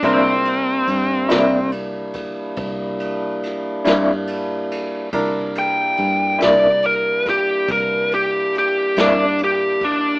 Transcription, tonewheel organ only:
X:1
M:12/8
L:1/8
Q:3/8=47
K:C
V:1 name="Tonewheel organ"
[F,_A,_B,D] [G,B,DE]8- [G,B,DE]3 | [G,_B,DE]12 |]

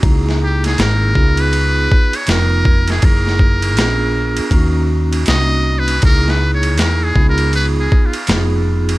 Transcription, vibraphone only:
X:1
M:4/4
L:1/16
Q:"Swing 16ths" 1/4=80
K:D#phr
V:1 name="Vibraphone"
[A,DEFG]6 [B,D^EG]4 z2 [B,DEA]3 z | [A,DEG]4 [B,C=D^EG]4 [A,C^DF]4 [A,CDF]3 z | [A,DEG]6 [B,D^EG]4 z2 [B,DEG]3 z |]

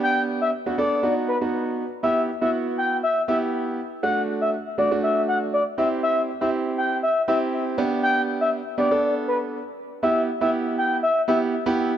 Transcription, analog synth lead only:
X:1
M:4/4
L:1/16
Q:1/4=120
K:Em
V:1 name="Analog synth lead"
g2 z e z2 d3 z B z4 z | e2 z e z2 g2 e2 e z4 z | f2 z e z2 d2 e2 f z d z e z | e2 z e z2 g2 e2 e z4 z |
g2 z e z2 d3 z B z4 z | e2 z e z2 g2 e2 e z4 z |]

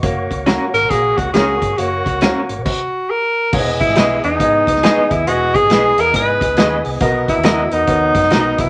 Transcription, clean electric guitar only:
X:1
M:4/4
L:1/8
Q:"Swing" 1/4=138
K:Elyd
V:1 name="Clean electric guitar"
z2 [CFA] z3 [CFA] z | z2 [CFA] z4 z | z2 [GBd] z3 [GBd] z | z2 [GBd] z3 [GBd] z |
z2 [FAd] z3 [FAd] z |]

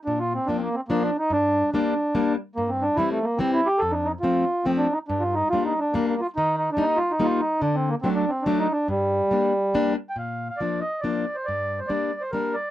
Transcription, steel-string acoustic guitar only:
X:1
M:3/4
L:1/8
Q:"Swing" 1/4=142
K:Gm
V:1 name="Steel-string acoustic guitar"
B,,2 [F,B,D] z [F,B,D] z | G,,2 [G,B,D] z [G,B,D] z | G,,2 [=E,G,C] z [E,G,C] z | F,,2 [F,A,C] z [F,A,C] z |
G,,2 [G,B,D] z [G,B,D] z | E,2 [G,B,E] z [G,B,E] z | D,2 [^F,A,D] z [F,A,D] z | G,,2 [G,B,D] z [G,B,D] z |
[K:Bb] B,,2 [F,B,D] z [F,B,D] z | G,,2 [G,B,D] z [G,B,D] z |]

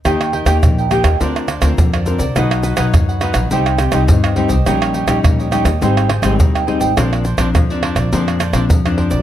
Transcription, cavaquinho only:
X:1
M:4/4
L:1/16
Q:1/4=104
K:Eb
V:1 name="Cavaquinho"
[GBeg]2 [GBeg] [GBeg] z [Beg] [GBeg] [eg] [DBcd]2 [DBcd] [DBcd] z [Bcd] [DBcd] [Bcd] | [^F=B^d^f]2 [FBdf] [FBdf] z [Bdf] [FBdf] [Bdf] [EGce]2 [EGce] [EGce] z [Gce] [EGce] [Gce] | [EG_de]2 [EGde] [EGde] z [Gde] [EGde] [Gde] [Aceg]2 [Aceg] [Aceg] z [ceg] [Aceg] [ceg] | [DBcd]2 [DBcd] [DBcd] z [Bcd] [DBcd] [Bcd] [DBcd]2 [DBcd] [DBcd] z [Bcd] [DBcd] [Bcd] |]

